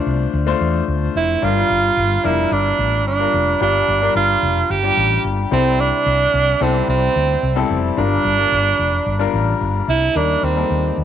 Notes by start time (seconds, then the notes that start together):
Already playing: D3 A3 D4 F4 C5
0.06 C2
0.33 D2
0.46 A3 D4 F4 C5
0.61 E2
0.88 D2
1.15 F1 E4
1.42 G1 G2 G3 D4 F4 A#4
1.70 G1
1.97 G1
2.24 F1 G3 D4 E4 F4 A#4
2.52 G1 D4
2.79 A1
3.06 G1 D4
3.19 G3 D4 F4 A#4
3.34 F1
3.61 G1 G2 G3 D4 F4 G4
3.88 G1
4.01 G3 D4 F4 A#4
4.15 G1 F4
4.43 F1
4.70 G1 G4
4.83 G3 D4 F4 G4
4.97 A1
5.25 G1
5.51 C2 C3 G3 C4 E4 A4
5.80 D4
6.06 C2
6.34 C2
6.60 C2 G3 C4 E4 A4
6.88 C2 C4
7.16 D2
7.43 C2
7.56 G3 C4 E4 A4
7.70 F1
7.97 G1 G2 G3 D4 F4 A#4
8.25 G1
8.38 G3 D4 F4 A#4
8.52 G1
8.79 F1
9.06 G1
9.19 G3 D4 F4 A#4
9.34 A1
9.61 G1
9.88 C2 E4
10.15 D#2 D#3 G3 A#3 D4 D#4 A#4
10.43 D#2 C4
10.56 G3 A#3 D#4 A4
10.70 D#2
10.97 D#2